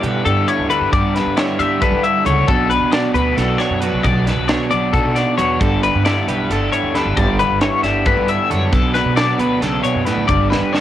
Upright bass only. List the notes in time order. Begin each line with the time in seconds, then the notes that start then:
0.03 B2
0.25 G2
0.59 D2
0.81 G2
0.93 G2
1.26 G2
1.59 G2
1.82 G3
1.92 G3
2.25 C#2
2.48 B1
2.81 B2
3.14 D2
3.37 B1
3.70 F#2
3.92 B1
4.04 B1
4.37 B1
4.70 B1
4.94 B2
5.05 B2
5.39 E2
5.61 G1
5.95 G2
6.27 B1
6.50 G1
6.83 D2
7.05 G1
7.17 G1
7.50 G1
7.83 G1
8.06 G2
8.17 G2
8.51 F#2
8.72 B1
9.05 B2
9.39 D2
9.61 B1
9.95 F#2
10.17 D2
10.29 G1
10.61 G1